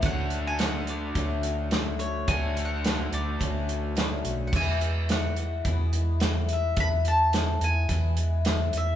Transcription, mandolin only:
\new Staff \with { instrumentName = "Mandolin" } { \time 4/4 \key e \mixolydian \tempo 4 = 107 fis''8. gis''16 fis''8 d''4 r4 cis''8 | \tuplet 3/2 { gis''4 fis''8~ } fis''16. r32 d''2 r16. fis''32 | gis''4 fis''2~ fis''8 e''8 | b''8 a''4 gis''2 e''8 | }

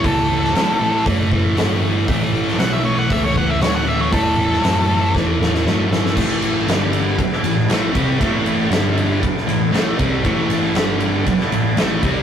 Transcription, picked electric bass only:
\new Staff \with { instrumentName = "Picked electric bass" } { \clef bass \time 4/4 \key g \lydian \tempo 4 = 118 cis,4 a,,4 fis,,4 g,,4 | a,,4 b,,4 cis,4 d,4 | e,4 fis,4 e,4 g,4 | a,,4 g,,4 r8 a,,8 a,,8 c,8 |
a,,4 g,,4 r8 a,,8 a,,8 c,8 | a,,4 g,,4 r8 a,,8 a,,8 c,8 | }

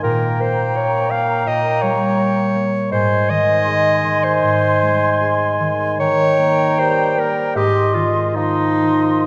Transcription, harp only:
\new Staff \with { instrumentName = "Harp" } { \clef bass \time 4/4 \key aes \major \tempo 4 = 78 bes,8 bes8 des''8 bes8 bes,8 g8 des''8 bes8 | aes,8 ees8 aes'8 ees8 aes,8 aes8 aes'8 ees8 | ees8 bes8 bes'8 bes8 aes,8 ees8 aes'8 ees8 | }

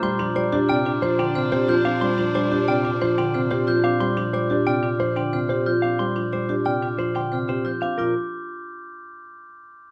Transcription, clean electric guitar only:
\new Staff \with { instrumentName = "Clean electric guitar" } { \time 6/4 \key c \dorian \tempo 4 = 181 c'''8 r8 c''8 r8 g''8 r8 c''8 g''8 r8 c''8 r8 f''8 | c'''8 r8 c''8 r8 g''8 r8 c''8 g''8 r8 c''8 r8 f''8 | c'''8 r8 c''8 r8 g''8 r8 c''8 g''8 r8 c''8 r8 f''8 | c'''8 r8 c''8 r8 g''8 r8 c''8 g''8 r8 c''8 r8 f''8 |
bes'8 r1 r4. | }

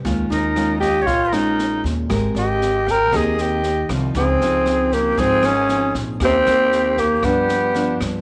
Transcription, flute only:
\new Staff \with { instrumentName = "Flute" } { \time 4/4 \key ees \mixolydian \tempo 4 = 117 r8 bes'4 ees''8 des''8 bes'4 r8 | r8 ees''4 g''8 ees''8 ees''4 r8 | aes'4. g'8 aes'8 aes'4 r8 | g'4. g'8 g'4. r8 | }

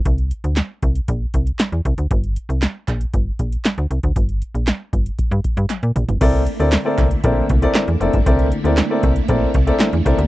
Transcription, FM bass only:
\new Staff \with { instrumentName = "FM bass" } { \clef bass \time 4/4 \key c \mixolydian \tempo 4 = 117 c,8. d,8 r16 c,8 bes,,8 c,8 r16 e,16 c,16 d,16 | g,,8. c,8 r16 bes,,8 g,,8 bes,,8 r16 d,16 c,16 d,16 | g,,8. bes,,8 r16 g,,8 r16 g,16 r16 g,16 r16 bes,16 bes,,16 g,,16 | c,8. d,8 r16 c,8 bes,,8 c,8 r16 e,16 f,,16 g,,16 |
c,8. d,8 r16 c,8 bes,,8 c,8 r16 e,16 c,16 d,16 | }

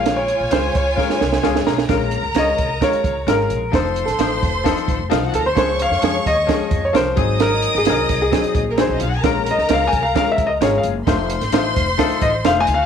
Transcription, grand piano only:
\new Staff \with { instrumentName = "Grand piano" } { \time 4/4 \key bes \minor \tempo 4 = 131 f''16 des''8. c''8 des''2 r8 | r4 ees''4 des''4 bes'4 | \tuplet 3/2 { c''4 a'8~ } a'4~ a'16 r4 r16 a'16 c''16 | c''8 f''4 ees''4~ ees''16 des''16 c''4 |
bes'8. aes'16 bes'8. aes'4~ aes'16 c''8 r8 | r8 ees''8 \tuplet 3/2 { f''8 aes''8 f''8 f''8 e''8 ees''8 des''8 f''8. r16 } | r2 r8 ees''8 \tuplet 3/2 { f''8 aes''8 f''8 } | }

